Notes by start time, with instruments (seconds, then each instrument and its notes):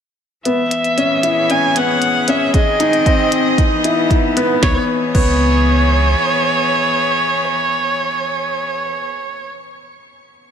0.45 analog synth bass C#2, string quartet E3, felt piano B3, violin E5, closed hi-hat
0.71 string quartet B3, closed hi-hat
0.84 closed hi-hat
0.97 felt piano C#4, closed hi-hat
1.09 string quartet G#4
1.13 string quartet C#5
1.23 felt piano E4, closed hi-hat
1.50 felt piano C#4, violin G#5, closed hi-hat
1.76 felt piano B3, violin F#5, closed hi-hat
2.02 closed hi-hat
2.28 felt piano C#4, violin E5, closed hi-hat
2.54 analog synth bass G#1, string quartet D#3, felt piano G#4, violin D#5, kick, closed hi-hat
2.65 string quartet C4
2.80 felt piano D#4, closed hi-hat
2.93 closed hi-hat
3.01 string quartet D#5
3.06 felt piano C4, kick, closed hi-hat
3.32 closed hi-hat
3.58 analog synth bass E2, string quartet E3, felt piano D#4, kick, closed hi-hat
3.70 string quartet B3
3.84 felt piano E4, closed hi-hat
4.10 felt piano D#4, kick, closed hi-hat
4.37 felt piano B3, closed hi-hat
4.62 analog synth bass C#2, string quartet E3, felt piano B3, violin C#5, kick, snare
4.71 string quartet B3
4.79 string quartet G#4
4.86 string quartet C#5
5.14 analog synth bass C#2, felt piano B3, violin C#5, kick, crash